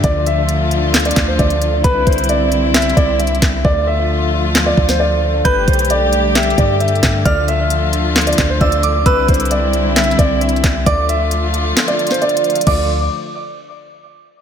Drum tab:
CC |------------------------------------------------------------------------------------------------|------------------------------------------------------------------------------------------------|------------------------------------------------------------------------------------------------|------------------------------------------------------------------------------------------------|
HH |x-----------x-----------x-----------x-----------x--x--x--x--x-----------x-----x-----x-----------|x-----------x--x--x--x--x-----------x-----------x---x---x---x-----------x---x---x---x-----------|------------------------------------------------------------------------------------------------|x-----------x--x--x--x--x-----------x-----------x---x---x---x-----------x---x---x---x-----------|
CP |------------------------------------------------x-----------x-----------------------------------|------------------------------------------------x-----------------------------------x-----------|------------------------------------------------x-----------------------------------------------|------------------------------------------------x-----------------------------------x-----------|
SD |------------------------------------------------o-----------o-----------------------------------|------------------------------------------------o-----------------------------------o-----------|------------------------------------------------o-----------------o-----------------------------|------------------------------------------------o-----------------------------------o-----------|
BD |o-----------------------------------------------------------o-----------o-----------------------|o-----------o-----------------------------------------------o-----------------------o-----------|o-----------------------------------------------------------o-----------------------------------|o-----------o-----------------------------------------------o-----------------------o-----------|

CC |------------------------------------------------------------------------------------------------|------------------------------------------------------------------------------------------------|------------------------------------------------------------------------------------------------|x-----------------------------------------------------------------------------------------------|
HH |x-----------x-----------x-----------x-----------x--x--x--x--x-----------x-----x-----x-----------|x-----------x--x--x--x--x-----------x-----------x---x---x---x-----------x---x---x---x-----------|x-----------x-----------x-----------x-----------x-----x-----x---x---x---x---x---x---x--x--x--x--|------------------------------------------------------------------------------------------------|
CP |------------------------------------------------x-----------x-----------------------------------|------------------------------------------------x-----------------------------------x-----------|------------------------------------------------x-----------------------------------------------|------------------------------------------------------------------------------------------------|
SD |------------------------------------------------o-----------o-----------------------------------|------------------------------------------------o-----------------------------------o-----------|------------------------------------------------o-----------------o-----------------------------|------------------------------------------------------------------------------------------------|
BD |o-----------------------------------------------------------o-----------o-----------------------|o-----------o-----------------------------------------------o-----------------------o-----------|o-----------------------------------------------------------------------------------------------|o-----------------------------------------------------------------------------------------------|